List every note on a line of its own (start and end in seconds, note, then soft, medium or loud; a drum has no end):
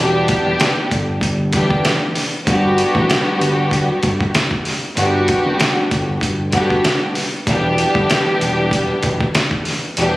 0.00 0.35 E1 loud
0.00 1.27 E3 medium
0.00 1.27 G3 medium
0.00 1.27 B3 loud
0.00 1.28 D4 medium
0.00 1.28 G4 loud
0.28 kick medium
0.28 closed hi-hat medium
0.46 0.57 E1 medium
0.60 snare loud
0.60 closed hi-hat medium
0.91 1.81 G1 medium
0.91 kick medium
0.91 closed hi-hat medium
1.21 kick medium
1.21 closed hi-hat medium
1.53 2.11 E3 loud
1.53 2.11 G3 medium
1.53 2.12 B3 medium
1.53 2.12 D4 medium
1.53 2.12 G4 loud
1.53 kick medium
1.53 closed hi-hat medium
1.71 kick medium
1.85 snare loud
1.85 closed hi-hat medium
2.15 snare soft
2.15 open hi-hat medium
2.46 2.85 G1 loud
2.46 4.63 G3 medium
2.46 4.63 B3 medium
2.46 4.64 D4 medium
2.46 4.63 F#4 loud
2.46 4.64 G4 loud
2.46 kick loud
2.46 closed hi-hat medium
2.78 closed hi-hat medium
2.95 3.06 A1 medium
2.95 kick medium
3.10 snare loud
3.10 closed hi-hat medium
3.41 3.90 G1 medium
3.41 closed hi-hat medium
3.71 kick medium
3.71 closed hi-hat medium
4.03 4.28 G1 medium
4.03 kick medium
4.03 closed hi-hat medium
4.20 kick medium
4.35 snare loud
4.35 closed hi-hat medium
4.51 kick medium
4.65 snare soft
4.65 open hi-hat medium
4.97 5.35 G1 loud
4.97 6.27 G3 medium
4.97 6.27 B3 medium
4.97 6.28 D4 medium
4.97 6.27 F#4 loud
4.97 6.28 G4 loud
4.97 closed hi-hat medium
5.28 kick medium
5.28 closed hi-hat medium
5.46 5.57 F#1 medium
5.60 snare loud
5.60 closed hi-hat medium
5.91 6.81 G1 medium
5.91 kick medium
5.91 closed hi-hat medium
6.21 kick medium
6.21 closed hi-hat medium
6.52 7.11 G3 medium
6.52 7.11 B3 medium
6.52 7.12 D4 medium
6.52 7.11 F#4 medium
6.52 7.12 G4 loud
6.52 kick medium
6.52 closed hi-hat medium
6.70 kick loud
6.85 snare loud
6.85 closed hi-hat medium
7.15 snare soft
7.15 open hi-hat medium
7.47 7.85 E1 loud
7.47 9.63 E3 loud
7.47 9.63 G3 loud
7.47 9.63 B3 medium
7.47 9.64 D4 loud
7.47 9.64 G4 loud
7.47 kick loud
7.47 closed hi-hat medium
7.78 closed hi-hat medium
7.95 8.06 G1 medium
7.95 kick medium
8.10 snare loud
8.10 closed hi-hat medium
8.41 8.90 E1 medium
8.41 closed hi-hat medium
8.71 kick medium
8.71 closed hi-hat medium
9.03 9.28 E1 medium
9.03 kick medium
9.03 closed hi-hat medium
9.20 kick medium
9.35 snare loud
9.35 closed hi-hat medium
9.51 kick medium
9.65 snare soft
9.65 open hi-hat medium
9.97 10.17 E1 loud
9.97 10.17 E3 medium
9.97 10.17 G3 loud
9.97 10.17 B3 loud
9.97 10.17 D4 medium
9.97 10.17 G4 loud
9.97 closed hi-hat medium